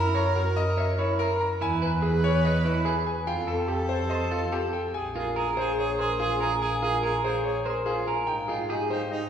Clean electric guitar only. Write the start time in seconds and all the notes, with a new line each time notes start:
Already playing: E4
0.16 A#4
0.36 F#4
0.78 C#5
0.99 E4
1.20 A#4
1.61 E4
1.82 B4
2.02 G#4
2.45 C#5
2.65 E4
2.86 B4
3.27 F4
3.48 A4
3.68 G4
4.11 C5
4.31 F4
4.52 A4
5.16 F4
5.36 A#4
5.57 G#4
5.99 C5
6.20 F4
6.40 A#4
6.82 F4
7.03 A#4
7.24 G#4
7.66 C5
7.87 F4
8.07 A#4
8.49 F4
8.70 G#4
8.90 G4